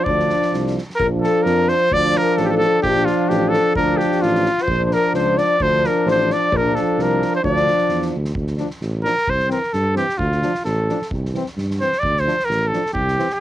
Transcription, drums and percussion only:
0.06 kick
0.19 snare
0.29 snare
0.42 snare
0.53 snare
0.67 snare
0.78 snare
0.90 snare
1.00 kick
1.24 snare
1.46 snare
1.68 snare
1.92 kick
2.15 snare
2.37 snare
2.61 snare
2.84 kick
3.07 snare
3.30 snare
3.53 snare
3.76 kick
4.00 snare
4.12 snare
4.22 snare
4.35 snare
4.46 snare
4.58 snare
4.68 kick
4.91 snare
5.14 snare
5.37 snare
5.60 kick
5.84 snare
6.08 snare
6.30 snare
6.52 kick
6.75 snare
6.99 snare
7.22 snare
7.44 kick
7.56 snare
7.67 snare
7.78 snare
7.89 snare
8.02 snare
8.24 snare
8.35 kick
8.47 snare
8.57 snare
8.70 snare
8.81 snare
9.05 snare
9.18 snare
9.27 kick
9.39 snare
9.50 snare
9.63 snare
9.73 snare
9.96 snare
10.09 snare
10.19 kick
10.32 snare
10.42 snare
10.54 snare
10.65 snare
10.89 snare
11.02 snare
11.11 kick
11.25 snare
11.34 snare
11.46 snare
11.58 snare
11.70 snare
11.80 snare
11.92 snare
12.03 kick
12.16 snare
12.28 snare
12.39 snare
12.50 snare
12.73 snare
12.86 snare
12.95 kick
13.08 snare
13.19 snare
13.30 snare

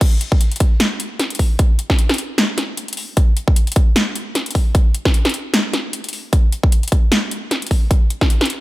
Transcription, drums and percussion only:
0.01 kick, closed hi-hat, crash
0.21 closed hi-hat
0.32 kick
0.41 closed hi-hat
0.52 closed hi-hat
0.56 closed hi-hat
0.60 kick, closed hi-hat
0.80 snare, closed hi-hat
1.00 closed hi-hat
1.20 snare, closed hi-hat
1.30 closed hi-hat
1.35 closed hi-hat
1.39 kick, open hi-hat
1.59 kick, closed hi-hat
1.79 closed hi-hat
1.90 kick, snare
1.99 closed hi-hat
2.09 snare, closed hi-hat
2.14 closed hi-hat
2.18 closed hi-hat
2.38 snare, closed hi-hat
2.58 snare, closed hi-hat
2.77 closed hi-hat
2.88 closed hi-hat
2.93 closed hi-hat
2.97 open hi-hat
3.17 kick, closed hi-hat
3.37 closed hi-hat
3.48 kick
3.56 closed hi-hat
3.67 closed hi-hat
3.72 closed hi-hat
3.76 kick, closed hi-hat
3.96 snare, closed hi-hat
4.16 closed hi-hat
4.35 snare, closed hi-hat
4.46 closed hi-hat
4.51 closed hi-hat
4.55 kick, open hi-hat
4.75 kick, closed hi-hat
4.94 closed hi-hat
5.05 kick, snare
5.14 closed hi-hat
5.25 snare, closed hi-hat
5.29 closed hi-hat
5.34 closed hi-hat
5.54 snare, closed hi-hat
5.73 snare, closed hi-hat
5.93 closed hi-hat
6.04 closed hi-hat
6.09 closed hi-hat
6.13 open hi-hat
6.33 kick, closed hi-hat
6.52 closed hi-hat
6.63 kick
6.72 closed hi-hat
6.83 closed hi-hat
6.88 closed hi-hat
6.92 kick, closed hi-hat
7.12 snare, closed hi-hat
7.31 closed hi-hat
7.51 snare, closed hi-hat
7.62 closed hi-hat
7.67 closed hi-hat
7.71 kick, open hi-hat
7.91 kick, closed hi-hat
8.10 closed hi-hat
8.21 kick, snare
8.30 closed hi-hat
8.41 snare, closed hi-hat
8.45 closed hi-hat
8.50 closed hi-hat

